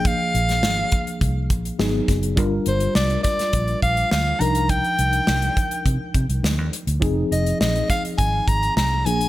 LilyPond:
<<
  \new Staff \with { instrumentName = "Soprano saxophone" } { \time 4/4 \key c \minor \tempo 4 = 103 f''2 r2 | r8 c''8 d''8 d''4 f''8 f''8 bes''8 | g''2 r2 | r8 ees''8 ees''8 f''8 aes''8 bes''8 bes''8 aes''8 | }
  \new Staff \with { instrumentName = "Tine electric piano" } { \time 4/4 \key c \minor <f bes d' aes'>2. <ges ces' ees' aes'>4 | <g d' f' bes'>2.~ <g d' f' bes'>8 <f d' ees' bes'>8~ | <f d' ees' bes'>2.~ <f d' ees' bes'>8 r8 | <f c' ees' aes'>2.~ <f c' ees' aes'>8 <f bes d' aes'>8 | }
  \new Staff \with { instrumentName = "Fingered electric bass" } { \clef bass \time 4/4 \key c \minor bes,,8 bes,,8 aes,,8 r8 c,8 bes,,8 aes,,8 ges,,8 | g,,8 g,,8 c,8 r8 bes,,8 bes,,8 d,8 c,8~ | c,8 c,8 c,8 r8 c16 r16 c16 c,16 d,16 ees,16 r16 d,16 | f,,8 f,,8 bes,,8 r8 aes,,8 aes,,8 c,8 bes,,8 | }
  \new DrumStaff \with { instrumentName = "Drums" } \drummode { \time 4/4 <hh bd>8 hh16 <hh sn>16 sn8 <hh bd>16 hh16 <hh bd>8 <hh bd>16 hh16 sn8 <hh bd sn>16 hh16 | <hh bd>8 hh16 hh16 sn16 hh16 <hh bd sn>16 <hh sn>16 <hh bd>16 hh16 <hh bd>16 hh16 sn8 hh16 hh16 | <hh bd>16 hh16 hh16 hh16 sn16 hh16 <hh bd>16 hh16 <hh bd>8 <hh bd>16 hh16 sn8 hh16 hh16 | <hh bd>8 hh16 hh16 sn16 hh16 <hh bd sn>16 hh16 <hh bd>8 <hh bd>16 hh16 sn8 hh16 hh16 | }
>>